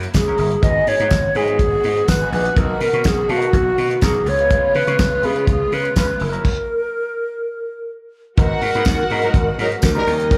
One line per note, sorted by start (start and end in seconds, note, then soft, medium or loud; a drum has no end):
0.00 0.58 C#3 medium
0.00 0.60 F#3 medium
0.00 0.60 A#3 medium
0.00 0.60 E4 medium
0.00 muted clean electric guitar stroke soft
0.00 closed hi-hat soft
0.14 0.31 C#2 loud
0.14 0.64 G#4 medium
0.14 muted clean electric guitar stroke soft
0.14 kick medium
0.14 snare loud
0.14 closed hi-hat medium
0.14 tambourine loud
0.28 0.38 F#3 medium
0.28 0.39 C#4 medium
0.28 0.40 E4 medium
0.28 0.40 A#4 medium
0.38 0.55 G1 medium
0.38 0.55 F#3 medium
0.38 0.52 C#4 medium
0.38 0.51 E4 medium
0.38 0.51 A#4 medium
0.38 open hi-hat medium
0.51 muted clean electric guitar stroke soft
0.51 closed hi-hat soft
0.63 0.79 G#1 medium
0.63 2.55 D#3 medium
0.63 0.85 F#3 medium
0.63 2.55 G#3 medium
0.63 0.86 B3 loud
0.63 2.55 B3 medium
0.63 0.86 D#4 medium
0.63 4.23 F#4 medium
0.63 0.86 G#4 medium
0.63 0.90 D#5 loud
0.63 kick loud
0.63 closed hi-hat medium
0.87 0.96 G#2 medium
0.87 1.38 C#5 medium
0.87 muted clean electric guitar stroke soft
0.87 open hi-hat medium
0.99 1.07 G#2 medium
0.99 1.11 F#3 soft
0.99 1.11 B3 medium
0.99 1.12 D#4 medium
0.99 1.13 A#4 medium
0.99 closed hi-hat soft
1.11 1.27 G#1 medium
1.11 muted clean electric guitar stroke soft
1.11 kick loud
1.11 snare loud
1.11 closed hi-hat medium
1.11 tambourine medium
1.25 muted clean electric guitar stroke soft
1.35 1.61 G#2 loud
1.35 1.49 F#3 medium
1.35 1.48 B3 medium
1.35 1.48 D#4 medium
1.35 2.10 G#4 loud
1.35 1.47 G#4 medium
1.35 open hi-hat medium
1.48 1.59 F#3 medium
1.48 1.59 B3 medium
1.48 1.60 D#4 medium
1.48 1.60 G#4 medium
1.48 closed hi-hat soft
1.59 1.76 G#1 medium
1.59 muted clean electric guitar stroke soft
1.59 kick loud
1.59 closed hi-hat medium
1.73 muted clean electric guitar stroke soft
1.84 2.00 G#2 medium
1.84 open hi-hat medium
1.97 muted clean electric guitar stroke soft
1.97 closed hi-hat soft
2.08 2.24 G#1 medium
2.08 2.33 B4 medium
2.08 muted clean electric guitar stroke soft
2.08 kick medium
2.08 snare loud
2.08 closed hi-hat medium
2.08 tambourine loud
2.21 2.32 F#3 medium
2.21 2.32 B3 medium
2.21 2.33 D#4 medium
2.21 2.34 G#4 medium
2.32 2.48 A#1 medium
2.32 2.49 F#3 medium
2.32 2.46 B3 medium
2.32 2.45 D#4 medium
2.32 2.45 G#4 medium
2.32 2.59 B4 medium
2.32 open hi-hat medium
2.45 muted clean electric guitar stroke soft
2.45 closed hi-hat soft
2.56 2.73 B1 loud
2.56 4.25 D#3 medium
2.56 2.79 A#3 medium
2.56 4.25 A#3 medium
2.56 6.17 B3 medium
2.56 2.80 D#4 medium
2.56 2.80 F#4 medium
2.56 2.81 A#4 medium
2.56 2.80 A#4 medium
2.56 kick loud
2.56 closed hi-hat medium
2.80 2.89 B2 medium
2.80 3.09 A#4 loud
2.80 muted clean electric guitar stroke soft
2.80 open hi-hat medium
2.93 3.01 B2 medium
2.93 3.05 A#3 medium
2.93 3.05 D#4 medium
2.93 3.06 F#4 medium
2.93 3.07 C#5 medium
2.93 closed hi-hat soft
3.04 3.21 B1 loud
3.04 3.32 G#4 medium
3.04 kick loud
3.04 snare loud
3.04 closed hi-hat medium
3.04 tambourine medium
3.19 muted clean electric guitar stroke medium
3.28 3.45 B2 loud
3.28 3.42 A#3 medium
3.28 3.42 D#4 medium
3.28 3.41 F#4 medium
3.28 4.06 F#4 loud
3.28 3.41 A#4 medium
3.28 open hi-hat medium
3.42 3.53 A#3 soft
3.42 3.53 D#4 medium
3.42 3.54 F#4 medium
3.42 3.53 A#4 medium
3.42 closed hi-hat soft
3.53 3.70 B1 medium
3.53 muted clean electric guitar stroke soft
3.53 kick loud
3.53 closed hi-hat medium
3.67 muted clean electric guitar stroke soft
3.78 3.94 B2 loud
3.78 open hi-hat medium
3.90 muted clean electric guitar stroke soft
3.90 closed hi-hat medium
4.01 4.18 B1 loud
4.01 4.22 A#3 medium
4.01 4.16 D#4 medium
4.01 4.16 F#4 medium
4.01 4.30 G#4 medium
4.01 4.15 A#4 loud
4.01 kick loud
4.01 snare loud
4.01 closed hi-hat medium
4.01 tambourine loud
4.16 muted clean electric guitar stroke soft
4.26 4.58 C#2 medium
4.26 6.43 C#3 medium
4.26 6.19 G#3 medium
4.26 6.19 F4 medium
4.26 4.77 C#5 loud
4.26 muted clean electric guitar stroke soft
4.26 open hi-hat medium
4.39 4.50 G#3 soft
4.39 4.51 C#4 medium
4.39 4.51 F4 medium
4.39 4.52 B4 medium
4.39 closed hi-hat soft
4.50 4.73 G#3 medium
4.50 4.74 C#4 medium
4.50 4.74 F4 medium
4.50 4.74 B4 loud
4.50 kick loud
4.50 closed hi-hat medium
4.75 4.84 C#3 medium
4.75 5.27 B4 loud
4.75 open hi-hat medium
4.87 4.95 C#3 loud
4.87 4.99 G#3 soft
4.87 4.99 C#4 medium
4.87 4.99 F4 medium
4.87 5.01 C#5 medium
4.87 closed hi-hat soft
4.99 5.25 C#2 loud
4.99 muted clean electric guitar stroke soft
4.99 kick loud
4.99 snare loud
4.99 closed hi-hat medium
4.99 tambourine loud
5.12 muted clean electric guitar stroke soft
5.22 5.49 C#3 loud
5.22 5.36 G#3 medium
5.22 5.36 C#4 medium
5.22 5.35 F4 medium
5.22 5.49 G#4 medium
5.22 5.35 B4 medium
5.22 open hi-hat medium
5.36 5.46 G#3 medium
5.36 5.47 C#4 medium
5.36 5.47 F4 medium
5.36 5.48 B4 medium
5.36 closed hi-hat soft
5.47 5.64 C#2 medium
5.47 5.76 G#4 medium
5.47 muted clean electric guitar stroke soft
5.47 kick loud
5.47 closed hi-hat medium
5.61 muted clean electric guitar stroke soft
5.72 5.88 C#3 medium
5.72 5.97 B4 medium
5.72 open hi-hat medium
5.84 muted clean electric guitar stroke soft
5.84 closed hi-hat soft
5.96 6.13 C#2 loud
5.96 6.16 G#3 medium
5.96 6.09 C#4 medium
5.96 6.08 F4 medium
5.96 6.08 B4 medium
5.96 6.25 B4 medium
5.96 kick medium
5.96 snare loud
5.96 closed hi-hat medium
5.96 tambourine loud
6.09 muted clean electric guitar stroke soft
6.20 6.37 F#1 loud
6.20 6.44 F#3 medium
6.20 6.44 A#3 medium
6.20 6.44 E4 medium
6.20 7.91 A#4 medium
6.20 muted clean electric guitar stroke soft
6.20 open hi-hat medium
6.33 6.49 F#3 soft
6.33 6.49 C#4 medium
6.33 6.48 E4 medium
6.33 6.48 A#4 medium
6.33 closed hi-hat soft
6.45 kick loud
6.45 crash medium
8.37 8.54 G#1 loud
8.37 10.05 B2 medium
8.37 8.60 F#3 medium
8.37 10.05 G#3 medium
8.37 10.38 A#3 medium
8.37 8.60 B3 medium
8.37 8.60 D#4 medium
8.37 9.79 F#4 loud
8.37 10.05 F#4 medium
8.37 8.61 A#4 medium
8.37 9.79 A#4 loud
8.37 9.79 F#5 loud
8.37 kick loud
8.37 closed hi-hat medium
8.61 8.70 G#2 loud
8.61 open hi-hat medium
8.74 8.83 G#2 medium
8.74 8.85 F#3 medium
8.74 8.86 B3 medium
8.74 8.86 D#4 medium
8.74 8.87 B4 medium
8.74 closed hi-hat soft
8.85 9.02 D#2 medium
8.85 muted clean electric guitar stroke soft
8.85 kick loud
8.85 snare loud
8.85 closed hi-hat medium
8.85 tambourine medium
8.99 muted clean electric guitar stroke medium
9.10 9.27 G#2 loud
9.10 9.25 F#3 loud
9.10 9.24 B3 medium
9.10 9.23 D#4 loud
9.10 9.23 A#4 loud
9.10 open hi-hat medium
9.22 9.30 F#3 medium
9.22 9.33 F#3 medium
9.22 9.34 B3 medium
9.22 9.30 D#4 medium
9.22 9.35 D#4 medium
9.22 9.30 A#4 loud
9.22 9.35 A#4 medium
9.22 closed hi-hat soft
9.34 9.50 G#1 medium
9.34 muted clean electric guitar stroke soft
9.34 kick loud
9.34 closed hi-hat medium
9.48 muted clean electric guitar stroke medium
9.58 9.75 G#2 loud
9.58 9.67 F#3 medium
9.58 9.67 D#4 medium
9.58 9.67 A#4 medium
9.58 open hi-hat medium
9.72 muted clean electric guitar stroke soft
9.72 closed hi-hat medium
9.82 9.99 D2 loud
9.82 10.38 A#4 loud
9.82 muted clean electric guitar stroke medium
9.82 kick loud
9.82 snare loud
9.82 closed hi-hat medium
9.82 tambourine medium
9.95 10.07 F#3 medium
9.95 10.11 G3 medium
9.95 10.07 B3 medium
9.95 10.11 D#4 loud
9.95 10.08 D#4 medium
9.95 10.07 A#4 medium
9.95 10.11 A#4 loud
10.07 10.38 D#2 loud
10.07 10.38 C#3 medium
10.07 10.38 G3 medium
10.07 10.23 A#3 medium
10.07 10.20 C#4 medium
10.07 10.38 D#4 loud
10.07 10.38 D#4 medium
10.07 10.19 G4 medium
10.07 10.18 A#4 medium
10.07 10.38 D#5 loud
10.07 open hi-hat medium
10.19 muted clean electric guitar stroke medium
10.19 closed hi-hat medium
10.31 10.38 A#3 medium
10.31 10.38 C#4 medium
10.31 10.38 G4 medium
10.31 10.38 A#4 medium
10.31 kick loud
10.31 closed hi-hat medium